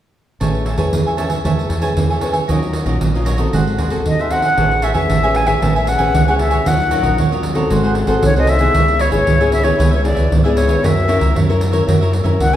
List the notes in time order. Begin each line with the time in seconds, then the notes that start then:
0.40 A1 A3 C#4 G#4 A4 B4 C#5 E5 G#5, pandeiro
0.55 pandeiro
0.65 A4 C#5 E5 G#5, pandeiro
0.77 E2 C#4 G#4 A4 B4 C#5 E5 G#5, pandeiro
0.93 E2 E3, pandeiro
1.06 C#5 E5 G#5, pandeiro
1.17 C#4 G#4 A4 B4 C#5 E5 G#5, pandeiro
1.30 C#5 E5 G#5, pandeiro
1.44 E2 A3 C#4 G#4 A4 B4 C#5 E5 G#5, pandeiro
1.59 pandeiro
1.69 E2 A4 C#5 E5 G#5, pandeiro
1.81 C#4 G#4 A4 B4 C#5 E5 G#5, pandeiro
1.97 E2 E3, pandeiro
2.10 C#5 E5 G#5, pandeiro
2.20 C#4 G#4 A4 B4 C#5 E5 G#5, pandeiro
2.32 C#5 E5 G#5, pandeiro
2.48 D#2 D#3 F#3 C#4 F4 F#4 A#4 C#5 D#5, pandeiro
2.63 pandeiro
2.73 F#4 A#4 C#5 D#5, pandeiro
2.86 A#1 F#3 C#4 F4 F#4 A#4 C#5 D#5, pandeiro
3.01 A#1 A#2, pandeiro
3.14 F#3 C#4 F4 A#4 C#5 D#5, pandeiro
3.25 F#4 A#4 C#5 D#5, pandeiro
3.37 C4 F#4 A4 A#4 C#5 D#5, pandeiro
3.53 G#1 G#3 F#4 G#4 C5 F#5, pandeiro
3.67 pandeiro
3.78 D#2 F#4 G#4 C5 F#5, pandeiro
3.90 C4 F#4 G#4 A4 C5 F#5, pandeiro
4.05 D#2 D#3 D#5, pandeiro
4.19 G#4 C5 E5 F#5, pandeiro
4.30 C4 F#4 G#4 A4 C5 F#5, pandeiro
4.42 G#4 C5 F#5, pandeiro
4.57 A1 A3 C#4 G#4 A4 B4 C#5 E5 G#5, pandeiro
4.71 muted cavaquinho stroke, pandeiro
4.82 A4 C#5 E5 G#5, pandeiro
4.94 E2 C#4 G#4 B4 C#5 E5 G#5, pandeiro
5.09 A1 E3 A4 C#5 E5 G#5, pandeiro
5.23 C#4 G#4 B4 C#5 E5 G#5, pandeiro
5.35 G#5, pandeiro
5.47 C#4 G#4 B4 C#5 E5 G#5, pandeiro
5.62 A1 A3 C#4 G#4 A4 B4 C#5 E5 G#5, pandeiro
5.75 C#5 E5 G#5, pandeiro
5.87 F#5, muted cavaquinho stroke, pandeiro
5.98 A1 C#4 G#4 B4 C#5 E5 G#5, pandeiro
6.14 C#2 E3, pandeiro
6.28 C#4 G#4 B4 C#5 E5 F#5 G#5, pandeiro
6.39 A4 C#5 E5 G#5, pandeiro
6.50 C#5 E5 G#5, pandeiro
6.66 D#2 D#3 F#3 C#4 F4 F#4 A#4 C#5 D#5 F#5, pandeiro
6.80 muted cavaquinho stroke, pandeiro
6.91 F#3 C#4 F4 F#4 A#4 C#5 D#5, pandeiro
7.03 A#1 A#4 C#5 D#5, pandeiro
7.18 D#2 A#2 F#4 A#4 C#5 D#5, pandeiro
7.31 F#3 C#4 F4 A#4 C#5 D#5, pandeiro
7.43 pandeiro
7.55 C4 F#4 A4 A#4 C#5 D#5, pandeiro
7.70 G#1 G#3 F#4 G#4 C5 F#5, pandeiro
7.83 G#4 C5 F#5, pandeiro
7.95 muted cavaquinho stroke, pandeiro
8.07 G#1 C4 F#4 G#4 A4 C5 F#5, pandeiro
8.23 C2 D#3 C#5, pandeiro
8.36 C4 F#4 G#4 A4 C5 D#5 F#5, pandeiro
8.47 F#4 G#4 C5 E5 F#5, pandeiro
8.59 B3 E4 G#4 C5 F#5, pandeiro
8.74 C#2 C#3 E4 B4 C#5 E5, pandeiro
8.88 muted cavaquinho stroke, pandeiro
8.99 E4 B4 C#5 E5, pandeiro
9.11 G#1 B3 E4 G#4 B4 C#5 E5, pandeiro
9.26 C#2 G#2 E4 B4 C#5 E5, pandeiro
9.40 B3 E4 G#4 B4 C#5 E5, pandeiro
9.52 E5, pandeiro
9.63 B3 E4 G#4 B4 C#5 E5, pandeiro
9.78 C#2 C#3 B3 E4 G#4 B4 C#5 E5, pandeiro
9.91 B4 C#5 E5, pandeiro
10.03 B3 E4 G#4 D5, muted cavaquinho stroke, pandeiro
10.15 C#2 B4 C#5 E5, pandeiro
10.31 C#2 G#2, pandeiro
10.44 B3 E4 G#4 B4 C#5 D5 E5, pandeiro
10.56 E4 B4 C#5 E5, pandeiro
10.67 B4 C#5 E5, pandeiro
10.83 F#2 F#3 C#4 E4 F#4 A#4 C#5 E5, pandeiro
10.97 muted cavaquinho stroke, pandeiro
11.07 C#4 E4 F#4 A#4 C#5 E5, pandeiro
11.19 C#2 A#4 C#5 E5, pandeiro
11.35 F#2 C#3 F#4 A#4 C#5 E5, pandeiro
11.49 C#4 E4 A#4 C#5 E5, pandeiro
11.61 pandeiro
11.72 C#4 E4 A#4 C#5 E5, pandeiro
11.87 F#2 F#3 C#4 E4 F#4 A#4 C#5 E5, pandeiro
12.01 A#4 C#5 E5, pandeiro
12.12 muted cavaquinho stroke, pandeiro
12.24 F#2 C#4 E4 A#4 C#5 E5, pandeiro
12.40 C#2 C#3 F#5, pandeiro
12.53 C#4 E5 G#5